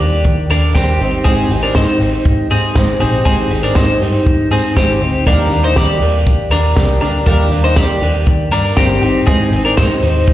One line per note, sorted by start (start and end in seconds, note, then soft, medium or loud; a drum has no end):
0.00 0.22 D#2 medium
0.00 0.75 A#3 soft
0.00 0.76 D4 soft
0.00 0.46 G4 soft
0.00 0.77 G4 medium
0.00 0.46 D5 medium
0.00 open hi-hat medium
0.24 0.46 D#3 medium
0.24 kick loud
0.24 closed hi-hat medium
0.50 0.71 D#2 medium
0.50 0.75 D4 medium
0.50 0.75 A#4 medium
0.50 open hi-hat medium
0.75 0.97 D#2 medium
0.75 1.00 G3 medium
0.75 1.01 A#3 medium
0.75 1.23 C4 medium
0.75 1.01 D4 medium
0.75 1.22 G4 medium
0.75 0.99 G4 medium
0.75 kick loud
0.75 snare loud
0.75 closed hi-hat medium
0.99 1.42 G#1 medium
0.99 1.25 C4 medium
0.99 1.26 D#4 soft
0.99 1.26 G4 medium
0.99 open hi-hat medium
1.24 1.51 G#3 medium
1.24 1.61 C4 medium
1.24 1.51 C4 medium
1.24 1.51 D#4 medium
1.24 1.49 G4 medium
1.24 1.60 G#4 medium
1.24 kick medium
1.24 closed hi-hat medium
1.50 1.71 G#1 medium
1.50 1.75 C4 soft
1.50 1.76 D#4 soft
1.50 1.75 G4 soft
1.50 open hi-hat medium
1.63 1.76 D4 medium
1.63 1.75 A#4 medium
1.75 1.97 G#2 medium
1.75 2.00 G#3 medium
1.75 2.01 C4 medium
1.75 2.47 D#4 medium
1.75 2.00 D#4 medium
1.75 1.99 G4 medium
1.75 2.47 C5 medium
1.75 kick loud
1.75 snare loud
1.75 closed hi-hat medium
2.00 2.21 G#1 medium
2.00 2.76 C4 soft
2.00 2.77 D#4 soft
2.00 2.78 G4 soft
2.00 open hi-hat medium
2.25 2.47 G#2 medium
2.25 kick loud
2.25 closed hi-hat medium
2.50 2.72 G#2 medium
2.50 2.98 C4 medium
2.50 2.98 G#4 medium
2.50 open hi-hat medium
2.75 2.97 G#1 medium
2.75 3.01 G#3 medium
2.75 3.01 C4 medium
2.75 3.00 D#4 medium
2.75 2.98 G4 medium
2.75 kick loud
2.75 snare loud
2.75 closed hi-hat medium
3.00 3.23 A#1 medium
3.00 3.25 C4 soft
3.00 3.26 D#4 soft
3.00 3.25 G4 medium
3.00 3.24 G#4 medium
3.00 open hi-hat soft
3.25 3.47 G#1 loud
3.25 3.51 G#3 medium
3.25 3.62 C4 medium
3.25 3.51 C4 medium
3.25 3.50 D#4 medium
3.25 3.49 G4 medium
3.25 3.61 G#4 medium
3.25 kick medium
3.25 closed hi-hat medium
3.50 3.72 G#1 medium
3.50 3.75 C4 soft
3.50 3.76 D#4 soft
3.50 3.76 G4 medium
3.50 open hi-hat medium
3.63 3.76 D4 medium
3.63 3.76 A#4 medium
3.75 3.98 G#2 loud
3.75 4.01 G#3 medium
3.75 4.01 C4 medium
3.75 4.48 D#4 soft
3.75 4.01 D#4 medium
3.75 4.00 G4 medium
3.75 4.47 C5 medium
3.75 kick loud
3.75 snare loud
3.75 closed hi-hat medium
4.01 4.23 G2 medium
4.01 4.75 C4 soft
4.01 4.77 D#4 soft
4.01 4.78 G4 medium
4.01 open hi-hat medium
4.26 4.48 G#2 medium
4.26 kick loud
4.26 closed hi-hat medium
4.51 4.73 G#2 medium
4.51 4.76 C4 medium
4.51 4.77 G#4 medium
4.51 open hi-hat medium
4.75 4.98 G#1 medium
4.75 5.01 G#3 medium
4.75 5.01 C4 medium
4.75 5.24 C4 soft
4.75 5.01 D#4 medium
4.75 5.24 G4 medium
4.75 5.00 G4 medium
4.75 kick loud
4.75 snare loud
4.75 closed hi-hat medium
5.01 5.23 D2 medium
5.01 5.27 C4 soft
5.01 5.27 D#4 medium
5.01 5.26 G4 medium
5.01 open hi-hat soft
5.26 5.48 D#2 medium
5.26 5.51 D#3 medium
5.26 5.52 G3 medium
5.26 5.52 A#3 medium
5.26 5.51 D4 medium
5.26 5.62 D4 medium
5.26 5.49 G4 medium
5.26 5.62 A#4 medium
5.26 kick medium
5.26 closed hi-hat medium
5.50 5.73 D#2 medium
5.50 5.75 A#3 soft
5.50 5.76 D4 soft
5.50 5.76 G4 soft
5.50 open hi-hat medium
5.64 5.77 D#4 medium
5.64 5.77 C5 medium
5.75 5.98 D#3 medium
5.75 6.01 G3 medium
5.75 6.01 A#3 medium
5.75 6.00 D4 medium
5.75 6.48 G4 medium
5.75 5.99 G4 medium
5.75 6.48 D5 medium
5.75 kick loud
5.75 snare loud
5.75 closed hi-hat medium
6.00 6.33 D#2 medium
6.00 6.75 A#3 soft
6.00 6.76 D4 soft
6.00 6.78 G4 medium
6.00 open hi-hat medium
6.27 kick loud
6.27 closed hi-hat medium
6.50 6.72 D#2 medium
6.50 6.99 D4 medium
6.50 6.99 A#4 medium
6.50 open hi-hat medium
6.75 6.98 C2 medium
6.75 7.01 G3 medium
6.75 7.02 A#3 medium
6.75 7.01 D4 medium
6.75 7.00 G4 medium
6.75 kick loud
6.75 snare loud
6.75 closed hi-hat medium
7.01 7.23 D2 medium
7.01 7.26 A#3 soft
7.01 7.26 D4 medium
7.01 7.27 D4 soft
7.01 7.27 G4 medium
7.01 7.25 A#4 medium
7.01 open hi-hat soft
7.26 7.48 D#2 medium
7.26 7.52 D#3 medium
7.26 7.52 G3 medium
7.26 7.52 A#3 medium
7.26 7.63 D4 medium
7.26 7.52 D4 medium
7.26 7.50 G4 medium
7.26 7.62 A#4 medium
7.26 kick medium
7.26 closed hi-hat medium
7.51 7.78 D#2 medium
7.51 7.76 A#3 soft
7.51 7.78 D4 soft
7.51 7.77 G4 medium
7.51 open hi-hat medium
7.64 7.77 D#4 medium
7.64 7.76 C5 medium
7.76 7.98 D#3 medium
7.76 8.02 G3 medium
7.76 8.02 A#3 medium
7.76 8.02 D4 medium
7.76 8.48 G4 medium
7.76 8.00 G4 medium
7.76 8.48 D5 medium
7.76 kick loud
7.76 snare loud
8.01 8.23 D#2 medium
8.01 8.76 A#3 soft
8.01 8.77 D4 soft
8.01 8.79 G4 medium
8.01 open hi-hat medium
8.26 8.48 D#3 medium
8.26 kick loud
8.26 closed hi-hat medium
8.51 8.73 G2 medium
8.51 8.77 D4 medium
8.51 8.77 A#4 medium
8.51 open hi-hat medium
8.76 8.98 G1 medium
8.76 9.02 G3 medium
8.76 9.02 A#3 medium
8.76 9.25 C4 medium
8.76 9.03 D4 medium
8.76 9.24 G4 medium
8.76 9.00 G4 medium
8.76 kick loud
8.76 snare loud
8.76 closed hi-hat medium
9.01 9.45 G#1 medium
9.01 9.27 C4 soft
9.01 9.28 D#4 medium
9.01 9.27 G4 medium
9.01 open hi-hat medium
9.27 9.53 G#3 medium
9.27 9.63 C4 medium
9.27 9.53 C4 medium
9.27 9.53 D#4 medium
9.27 9.51 G4 medium
9.27 9.62 G#4 medium
9.27 kick medium
9.27 closed hi-hat medium
9.52 9.73 G#1 medium
9.52 9.77 C4 soft
9.52 9.78 D#4 soft
9.52 9.77 G4 medium
9.52 open hi-hat medium
9.65 9.77 D4 medium
9.65 9.77 A#4 medium
9.77 9.99 G#2 medium
9.77 10.02 G#3 medium
9.77 10.03 C4 medium
9.77 10.33 D#4 medium
9.77 10.02 D#4 medium
9.77 10.01 G4 medium
9.77 10.33 C5 medium
9.77 kick loud
9.77 snare loud
10.02 10.24 D#2 medium
10.02 10.33 C4 soft
10.02 10.33 D#4 soft
10.02 10.33 G4 medium
10.02 open hi-hat medium
10.27 10.33 G#2 medium
10.27 kick loud
10.27 closed hi-hat medium